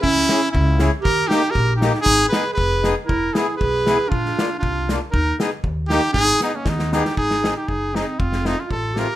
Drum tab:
HH |--p---p-|--p---p-|--p---p-|--p---p-|
SD |-oo---o-|--o---oo|--o---o-|--o---o-|
BD |o---o---|o---o---|o---o---|o---o---|

HH |--p---p-|--p---p-|--p---p-|--------|
SD |-oo---o-|--o---o-|o-o-oooo|-oo---o-|
BD |o---o---|o---o---|o---o---|o---o---|

HH |--------|
SD |-oo---o-|
BD |o---o---|